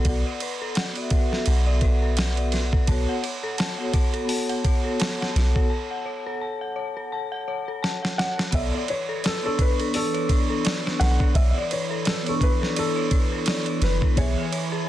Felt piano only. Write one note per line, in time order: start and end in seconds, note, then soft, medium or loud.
8.18 8.54 F#5 loud
8.55 8.72 E5 loud
8.75 8.89 D5 medium
8.90 9.25 C#5 medium
9.26 9.44 A4 medium
9.46 9.60 A4 medium
9.61 9.96 B4 loud
9.95 10.96 A4 loud
11.00 11.36 F#5 loud
11.36 11.49 E5 loud
11.51 11.55 E5 medium
11.58 11.72 D5 medium
11.73 12.08 C#5 medium
12.08 12.26 A4 medium
12.29 12.34 A4 medium
12.43 12.75 B4 loud
12.79 13.86 A4 loud
13.84 14.15 B4 loud
14.17 14.84 C#5 loud